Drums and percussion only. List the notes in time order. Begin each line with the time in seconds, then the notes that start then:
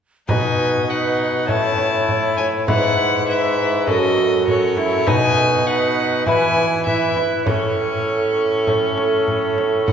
0.29 frame drum
1.49 frame drum
1.78 frame drum
2.09 frame drum
2.38 frame drum
2.68 frame drum
3.88 frame drum
4.18 frame drum
4.48 frame drum
4.77 frame drum
5.07 frame drum
6.27 frame drum
6.56 frame drum
6.87 frame drum
7.17 frame drum
7.46 frame drum
8.67 frame drum
8.98 frame drum
9.28 frame drum
9.58 frame drum
9.88 frame drum